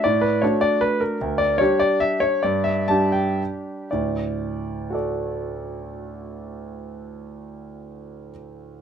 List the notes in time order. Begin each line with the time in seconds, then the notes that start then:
0.04 A2 D5
0.21 B4
0.42 A3 D4 F#4 C#5
0.61 D5
0.81 B4
1.01 A#4
1.21 D2
1.38 D5
1.58 G3 D4 G4 C#5
1.80 D5
2.00 E5
2.20 C#5
2.43 G2 D5
2.64 E5
2.88 G3 D4 G4 A5
3.12 G5
3.91 D2 A2 D5
4.90 F#4 A4
4.95 D5